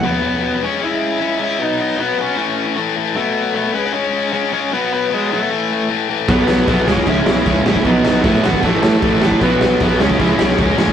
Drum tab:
CC |----------------|----------------|----------------|----------------|
SD |----------------|----------------|----------------|----------------|
BD |----------------|----------------|----------------|----------------|

CC |x---x---x---x---|x---x---x---x---|x---x---x---x---|
SD |--o---o---o---o-|--o---o---o---o-|--o---o---o---o-|
BD |o---o--oo---o--o|o---o--oo---o--o|o---o--oo---o--o|